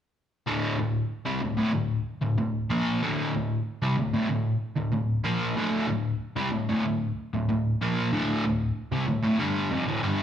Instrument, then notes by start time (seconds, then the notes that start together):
overdriven electric guitar
0.47 D2 A2 D3
0.79 D2 A2
1.25 C3 G3
1.41 D2 A2
1.57 D2 A2
1.73 D2 A2
2.21 D2 A2
2.38 D2 A2
2.70 A#2 F3 A#3
3.02 D2 A2 D3
3.34 D2 A2
3.82 C3 G3
3.98 D2 A2
4.14 D2 A2
4.30 D2 A2
4.77 D2 A2
4.93 D2 A2
5.25 A#2 F3 A#3
5.56 D2 A2 D3
5.87 D2 A2
6.36 C3 G3
6.52 D2 A2
6.69 D2 A2
6.85 D2 A2
7.34 D2 A2
7.49 D2 A2
7.81 A#2 F3 A#3
8.12 D2 A2 D3
8.45 D2 A2
8.92 C3 G3
9.08 D2 A2
9.23 D2 A2
9.40 G2 D3 G3
9.71 F2 C3
9.87 D2 A2
10.03 G2 D3 G3